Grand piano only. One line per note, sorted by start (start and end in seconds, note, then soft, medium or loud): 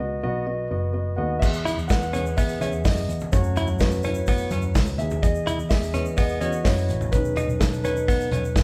0.00 0.20 B2 medium
0.00 0.23 B3 medium
0.00 0.23 F#4 medium
0.00 0.23 D#5 loud
0.23 0.41 B3 medium
0.23 0.41 F#4 medium
0.23 0.41 D#5 loud
0.46 0.64 B3 medium
0.46 0.64 F#4 medium
0.46 0.64 D#5 medium
0.70 0.88 B3 medium
0.70 0.88 F#4 medium
0.70 0.88 D#5 medium
0.93 1.11 B3 medium
0.93 1.12 F#4 medium
0.93 1.12 D#5 medium
1.16 1.35 B3 medium
1.16 1.36 F#4 medium
1.16 1.41 A4 medium
1.16 1.36 D#5 medium
1.16 1.42 F#5 medium
1.39 1.86 G#4 medium
1.39 1.90 E5 medium
1.88 2.34 B4 medium
1.88 2.33 F#5 medium
2.14 2.45 E3 medium
2.14 2.46 G#3 medium
2.14 2.46 B3 medium
2.37 2.61 G#4 medium
2.37 2.59 E5 medium
2.61 2.84 G#4 medium
2.61 2.83 E5 medium
2.85 3.30 G#4 medium
2.85 3.29 D#5 medium
3.32 3.65 F#3 medium
3.32 3.65 A3 medium
3.32 3.65 C#4 medium
3.32 3.78 F#4 medium
3.32 3.82 C#5 medium
3.80 4.03 F#4 medium
3.80 4.04 B4 medium
4.04 4.96 E4 medium
4.04 5.02 C#5 medium
4.98 5.22 G#4 medium
4.98 5.23 E5 medium
5.22 5.68 G#4 medium
5.22 5.72 D#5 loud
5.69 6.15 G#4 medium
5.69 6.19 E5 loud
5.94 6.62 E3 medium
5.94 6.62 G#3 medium
5.94 6.63 B3 medium
6.17 6.41 G#4 medium
6.17 6.39 D#5 loud
6.41 6.64 F#4 medium
6.41 6.66 D#5 loud
6.64 7.10 E4 medium
6.64 7.14 C#5 medium
7.12 8.63 D#3 medium
7.12 8.63 G#3 soft
7.12 8.63 C#4 medium
7.12 7.58 D#4 medium
7.12 7.57 B4 loud
7.60 7.83 D#4 medium
7.60 7.85 A4 medium
7.84 8.63 D#4 medium
7.84 8.63 B4 loud